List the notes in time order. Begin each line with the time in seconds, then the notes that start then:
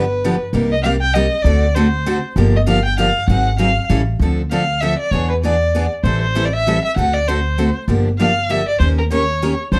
Already playing: G1 B4
0.24 D3 F3 B3 D4 G4
0.53 C2 C3 G3 A#3 D#4 G4
0.72 D#5
0.83 C3 G3 A#3 D#4 G4 F5
1.01 G5
1.14 C3 G3 A#3 D#4 G4 D#5
1.42 D2 D3 A3 C4 D5
1.46 F#4 A4
1.75 D3 A3 C4 F#4 A4 C5
2.06 D3 A3 C4 F#4 A4
2.36 G1 D3 F3 A#3 D4 G4
2.56 D#5
2.67 D3 F3 A#3 D4 G4 F5
2.85 G5
2.98 D3 F3 A#3 D4 G4 F5
3.28 G#1 D#3 F#3 C4 D#4 G#4 F#5
3.58 D#3 F#3 C4 D#4 G#4 F5
3.89 A1 E3 G3 C#4 E4 A4
4.19 D2 D3 F3 C4 D4 A4
4.51 D3 F3 C4 D4 A4 F5
4.81 D3 F3 C4 D4 A4 E5
4.99 D5
5.11 E2 E3 B3 D4 G#4 C#5
5.29 B4
5.43 E3 B3 D4 G#4 D5
5.75 E3 B3 D4 G#4
6.03 A1 E3 G3 C4 E4 A4 C5
6.22 C5
6.35 E3 G3 C4 E4 A4
6.45 D5
6.53 E5
6.66 E3 G3 C4 E4 A4
6.84 E5
6.96 D2 D3 A3 C4 F#4 A4 F#5
7.14 D5
7.28 D3 A3 C4 F#4 A4 C5
7.58 D3 A3 C4 F#4 A4
7.88 G1 D3 F3 A#3 D4 G4
8.19 D3 F3 A#3 D4 G4 F5
8.49 D3 F3 A#3 D4 G4 E5
8.68 D5
8.80 D#2 D#3 A#3 C#4 G4 A#4 C5
8.98 A#4
9.11 D#3 A#3 C#4 G4 A#4 C#5
9.42 D#3 A#3 C#4 G4 A#4
9.72 D2 D3 F3 C4 D4 A4 C5